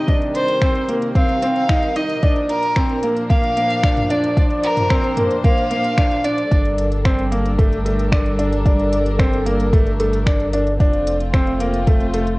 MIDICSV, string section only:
0, 0, Header, 1, 2, 480
1, 0, Start_track
1, 0, Key_signature, -2, "minor"
1, 0, Tempo, 535714
1, 75, Time_signature, 4, 2, 24, 8
1, 11100, End_track
2, 0, Start_track
2, 0, Title_t, "String section"
2, 0, Program_c, 0, 48
2, 0, Note_on_c, 0, 48, 74
2, 0, Note_on_c, 0, 51, 64
2, 0, Note_on_c, 0, 55, 65
2, 74, Note_on_c, 0, 70, 82
2, 1957, Note_off_c, 0, 51, 0
2, 1958, Note_off_c, 0, 48, 0
2, 1959, Note_off_c, 0, 55, 0
2, 1996, Note_on_c, 0, 46, 74
2, 1997, Note_on_c, 0, 62, 73
2, 1998, Note_on_c, 0, 53, 67
2, 3879, Note_off_c, 0, 70, 0
2, 3907, Note_on_c, 0, 72, 84
2, 5800, Note_off_c, 0, 46, 0
2, 5800, Note_off_c, 0, 62, 0
2, 5801, Note_off_c, 0, 53, 0
2, 5812, Note_off_c, 0, 72, 0
2, 5836, Note_on_c, 0, 69, 68
2, 5837, Note_on_c, 0, 55, 81
2, 5837, Note_on_c, 0, 62, 70
2, 5838, Note_on_c, 0, 70, 81
2, 9640, Note_off_c, 0, 55, 0
2, 9640, Note_off_c, 0, 62, 0
2, 9640, Note_off_c, 0, 69, 0
2, 9641, Note_off_c, 0, 70, 0
2, 9672, Note_on_c, 0, 65, 84
2, 9674, Note_on_c, 0, 57, 81
2, 9676, Note_on_c, 0, 60, 69
2, 11100, Note_off_c, 0, 57, 0
2, 11100, Note_off_c, 0, 60, 0
2, 11100, Note_off_c, 0, 65, 0
2, 11100, End_track
0, 0, End_of_file